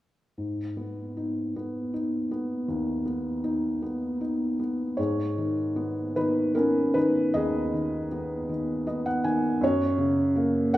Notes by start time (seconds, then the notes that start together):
0.38 G#2
0.77 B3
1.17 D#4
1.56 B3
1.94 D#4
2.31 B3
2.68 D#2
3.06 B3
3.44 D#4
3.82 B3
4.21 D#4
4.59 B3
4.97 G#2 G#4 C#5
5.38 D#3
5.76 B3
6.16 D#3 D#4 B4
6.55 B3 C#4 A#4
6.94 D#3 D#4 B4
7.34 D#2 G#4 D#5
7.74 D#3
8.12 B3
8.49 D#3
8.87 B3 D#5
9.06 F#5
9.24 D#3 G#5
9.61 F#2 F#4 C#5
9.98 C#3
10.36 A#3
10.73 C#4 F#5